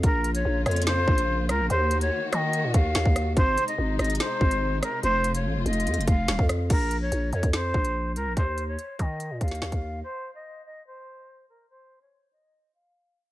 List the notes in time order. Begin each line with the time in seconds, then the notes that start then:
0.03 A#1 C#3 A#3 F4 A#4, kick, closed hi-hat
0.24 closed hi-hat
0.35 C#5, closed hi-hat
0.45 A#1
0.66 F2 C#5, cross-stick, closed hi-hat
0.71 closed hi-hat
0.76 closed hi-hat
0.82 closed hi-hat
0.86 C5, snare, closed hi-hat
1.08 A#1, kick
1.18 closed hi-hat
1.49 C#2 A#4, cross-stick, closed hi-hat
1.60 A#1
1.70 D#2 D#3 F#4 C5, closed hi-hat
1.91 closed hi-hat
2.01 C#5, closed hi-hat
2.32 D#3 D#5, cross-stick, closed hi-hat
2.53 closed hi-hat
2.64 A#2
2.74 D#2 F5, kick, closed hi-hat
2.95 D#2, snare, closed hi-hat
3.05 D#2, kick
3.16 cross-stick, closed hi-hat
3.37 G#1 C3 G#3 D#4 C5, kick, closed hi-hat
3.58 closed hi-hat
3.68 D#5, closed hi-hat
3.78 G#1
3.99 G#1 D#5, cross-stick, closed hi-hat
4.04 closed hi-hat
4.10 closed hi-hat
4.15 closed hi-hat
4.20 C5, snare, closed hi-hat
4.41 G#1, kick
4.51 closed hi-hat
4.83 A#4, cross-stick, closed hi-hat
5.03 F1 A3 F4 C5, closed hi-hat
5.24 closed hi-hat
5.35 C#5, closed hi-hat
5.45 A1
5.55 F1
5.66 F1 D#5, closed hi-hat
5.73 closed hi-hat
5.80 closed hi-hat
5.87 F2, closed hi-hat
5.94 F1, closed hi-hat
6.01 closed hi-hat
6.07 F1 F5, kick, closed hi-hat
6.28 D#1, snare, closed hi-hat
6.39 F2, kick
6.49 cross-stick, closed hi-hat
6.70 A#1 A#4, kick, closed hi-hat, crash
6.91 closed hi-hat
7.01 C#5
7.12 A#1, closed hi-hat
7.33 F2 C#5, closed hi-hat
7.43 F2, kick, closed hi-hat
7.53 C5, snare, closed hi-hat
7.74 A#1, kick
7.85 closed hi-hat
8.16 C#2 A#4, closed hi-hat
8.26 A#1
8.37 D#2 C5, kick, closed hi-hat
8.58 closed hi-hat
8.68 C#5
8.79 closed hi-hat
8.99 D#3 D#5, kick, closed hi-hat
9.20 closed hi-hat
9.31 A#2
9.41 D#2 F5, kick, closed hi-hat
9.48 snare, closed hi-hat
9.55 closed hi-hat
9.62 D#2, snare
9.72 D#2, kick, closed hi-hat
10.04 C5
10.35 D#5
10.66 D#5
10.87 C5
11.49 A#4
11.70 C5
12.01 C#5
12.33 D#5
12.74 F5